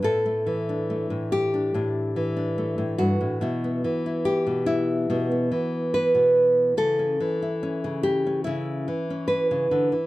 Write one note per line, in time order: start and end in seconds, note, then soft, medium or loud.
0.02 1.09 A2 medium
0.02 1.32 A4 medium
0.26 0.89 A3 soft
0.46 2.16 E3 medium
0.69 1.53 D4 soft
0.90 2.57 A3 soft
1.10 1.73 A2 medium
1.32 2.98 G4 medium
1.54 1.74 D4 soft
1.74 2.77 A2 medium
1.74 2.35 D4 soft
2.16 3.84 E3 medium
2.36 3.37 D4 soft
2.58 3.42 A3 soft
2.78 2.99 A2 medium
2.98 3.20 G2 medium
2.98 4.25 F#4 medium
3.21 3.42 A2 medium
3.41 3.83 B2 medium
3.41 4.06 E4 soft
3.64 5.09 B3 soft
3.84 5.50 E3 medium
4.06 4.66 E4 soft
4.25 5.51 G4 medium
4.47 5.09 B2 medium
4.66 6.76 E4 medium
5.10 5.51 B2 medium
5.10 5.30 B3 soft
5.31 6.72 B3 soft
5.52 7.19 E3 medium
5.94 6.77 B4 medium
6.15 6.77 B2 medium
6.77 7.19 C#3 medium
6.77 8.87 A4 loud
6.99 7.62 C#4 soft
7.20 8.87 E3 medium
7.42 8.03 E4 soft
7.63 8.26 C#4 medium
7.84 8.45 C#3 medium
8.03 8.44 G4 medium
8.27 9.10 C#4 soft
8.44 8.88 C#3 medium
8.44 10.07 E4 medium
8.88 9.91 E3 medium
9.10 10.07 C#4 soft
9.28 10.07 B4 medium
9.51 9.71 C#3 medium
9.71 9.92 D3 medium
9.92 10.07 E3 medium